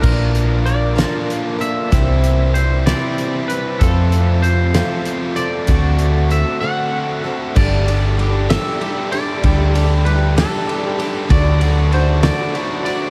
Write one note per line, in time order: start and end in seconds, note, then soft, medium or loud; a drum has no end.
0.01 1.03 A#1 medium
0.01 0.65 A#2 medium
0.01 0.96 D3 medium
0.01 0.66 F3 medium
0.01 0.63 A#3 medium
0.01 0.64 D4 medium
0.01 0.65 F4 medium
0.01 0.67 A#4 medium
0.01 0.66 A#4 medium
0.01 kick loud
0.01 crash loud
0.35 closed hi-hat medium
0.64 0.96 A#3 medium
0.64 0.96 D4 medium
0.64 0.95 F4 medium
0.64 0.94 A#4 medium
0.64 1.60 D5 medium
0.64 closed hi-hat medium
0.96 1.61 A#2 medium
0.96 1.91 D3 medium
0.96 1.61 F3 medium
0.96 1.60 A#3 medium
0.96 1.60 D4 medium
0.96 1.59 F4 medium
0.96 1.57 A#4 medium
0.96 snare loud
0.96 closed hi-hat medium
1.30 closed hi-hat medium
1.59 1.91 A#3 soft
1.59 1.91 D4 soft
1.59 1.92 F4 medium
1.59 1.91 A#4 medium
1.59 2.54 E5 loud
1.59 closed hi-hat medium
1.91 2.92 C2 loud
1.91 2.54 C3 medium
1.91 2.54 E3 medium
1.91 2.53 G3 medium
1.91 2.55 C4 medium
1.91 2.55 E4 medium
1.91 2.57 C5 medium
1.91 kick loud
1.91 closed hi-hat medium
2.24 closed hi-hat medium
2.54 2.86 G3 medium
2.54 2.86 C4 medium
2.54 2.85 E4 medium
2.54 2.86 C5 medium
2.54 2.85 C5 medium
2.54 closed hi-hat medium
2.86 3.50 C3 medium
2.86 3.50 E3 medium
2.86 3.49 G3 medium
2.86 3.51 C4 medium
2.86 3.49 E4 medium
2.86 3.82 C5 medium
2.86 3.48 D5 medium
2.86 snare loud
2.86 closed hi-hat medium
3.18 closed hi-hat medium
3.48 3.80 C4 soft
3.48 3.81 E4 medium
3.48 3.81 B4 medium
3.48 closed hi-hat medium
3.52 3.81 G3 soft
3.79 4.72 F2 medium
3.79 4.80 F2 medium
3.79 4.72 C3 medium
3.79 4.43 F3 medium
3.79 4.42 A3 medium
3.79 4.43 C4 medium
3.79 4.44 F4 medium
3.79 4.44 A4 medium
3.79 4.45 A4 medium
3.79 kick loud
3.79 closed hi-hat loud
4.12 closed hi-hat medium
4.42 4.74 A3 medium
4.42 4.75 C4 medium
4.42 4.74 F4 medium
4.42 4.73 A4 medium
4.42 5.35 C5 medium
4.42 closed hi-hat medium
4.74 5.68 F2 medium
4.74 5.68 C3 medium
4.74 5.38 F3 medium
4.74 5.68 A3 medium
4.74 5.37 C4 medium
4.74 5.36 F4 medium
4.74 5.35 A4 medium
4.74 snare loud
4.74 closed hi-hat loud
5.05 closed hi-hat medium
5.36 5.67 C4 soft
5.36 5.69 F4 soft
5.36 5.68 A4 medium
5.36 6.26 D5 loud
5.36 closed hi-hat medium
5.67 6.43 D2 loud
5.67 6.31 D3 medium
5.67 6.28 A3 medium
5.67 6.30 C4 medium
5.67 6.30 F#4 medium
5.67 6.31 A4 medium
5.67 kick loud
5.67 closed hi-hat loud
5.99 closed hi-hat medium
6.29 6.61 A3 medium
6.29 6.62 C4 medium
6.29 6.61 F#4 medium
6.29 6.60 A4 medium
6.29 6.60 E5 loud
6.29 closed hi-hat medium
6.61 7.25 D3 medium
6.61 7.25 A3 medium
6.61 7.25 C4 medium
6.61 7.24 F#4 medium
6.61 7.22 A4 medium
6.61 7.28 F#5 loud
7.24 7.55 C4 soft
7.24 7.56 F#4 medium
7.24 7.55 A4 medium
7.55 8.55 G1 loud
7.55 7.87 G3 medium
7.55 7.89 A3 loud
7.55 7.87 D4 medium
7.55 7.87 G4 medium
7.55 7.85 A4 medium
7.55 8.49 D5 medium
7.55 kick loud
7.55 crash loud
7.86 8.18 A3 medium
7.86 8.17 D4 soft
7.86 8.18 G4 soft
7.86 8.18 A4 medium
7.86 ride medium
8.17 8.49 G3 medium
8.17 8.51 A3 medium
8.17 8.49 D4 medium
8.17 8.49 G4 medium
8.17 8.48 A4 medium
8.17 ride medium
8.49 8.79 G3 medium
8.49 8.80 A3 medium
8.49 8.80 D4 medium
8.49 8.81 G4 medium
8.49 8.80 A4 medium
8.49 9.12 E5 loud
8.49 snare loud
8.49 ride loud
8.80 9.12 G3 medium
8.80 9.13 A3 medium
8.80 9.12 D4 medium
8.80 9.12 G4 medium
8.80 9.11 A4 medium
8.80 ride medium
9.12 9.43 A3 medium
9.12 9.43 D4 soft
9.12 9.43 G4 medium
9.12 9.43 A4 medium
9.12 9.70 D5 medium
9.12 ride medium
9.43 10.42 D2 medium
9.43 9.74 G3 medium
9.43 9.75 A3 loud
9.43 9.75 D4 medium
9.43 9.74 G4 medium
9.43 9.73 A4 medium
9.43 kick loud
9.43 ride loud
9.74 10.05 A3 medium
9.74 10.04 D4 soft
9.74 10.05 G4 soft
9.74 10.05 A4 medium
9.74 ride medium
10.04 10.36 G3 medium
10.04 10.38 A3 medium
10.04 10.37 D4 medium
10.04 10.36 G4 medium
10.04 10.35 A4 medium
10.04 10.37 B4 medium
10.04 ride medium
10.37 10.66 G3 medium
10.37 10.67 A3 medium
10.37 10.67 D4 medium
10.37 10.68 G4 medium
10.37 10.68 A4 medium
10.37 11.03 A4 medium
10.37 snare loud
10.37 ride loud
10.67 10.99 G3 medium
10.67 11.01 A3 medium
10.67 10.99 D4 medium
10.67 10.99 G4 medium
10.67 10.97 A4 medium
10.67 ride medium
10.99 11.30 A3 medium
10.99 11.28 D4 soft
10.99 11.30 G4 medium
10.99 11.29 A4 medium
10.99 ride medium
11.28 12.29 D2 loud
11.28 11.60 D3 medium
11.28 11.90 F#3 loud
11.28 11.61 A3 medium
11.28 11.61 D4 medium
11.28 11.61 F#4 medium
11.28 11.60 A4 medium
11.28 11.94 D5 medium
11.28 kick loud
11.28 ride loud
11.61 11.91 A3 medium
11.61 11.92 D4 soft
11.61 11.93 F#4 soft
11.61 11.92 A4 medium
11.61 ride medium
11.91 12.53 F#3 medium
11.91 12.23 A3 medium
11.91 12.23 D4 medium
11.91 12.22 F#4 medium
11.91 12.25 C5 medium
11.91 ride medium
11.95 12.21 A4 medium
12.23 12.55 D3 medium
12.23 12.53 A3 medium
12.23 12.54 D4 medium
12.23 12.55 F#4 medium
12.23 12.54 A4 medium
12.23 12.84 D5 loud
12.23 snare loud
12.23 ride loud
12.54 13.10 F#3 medium
12.54 12.85 A3 medium
12.54 12.86 D4 medium
12.54 12.87 F#4 medium
12.54 12.84 A4 medium
12.54 ride medium
12.85 13.10 A3 medium
12.85 13.10 F#4 soft
12.85 13.10 A4 medium
12.85 13.10 D5 medium
12.85 ride medium
12.89 13.10 D4 soft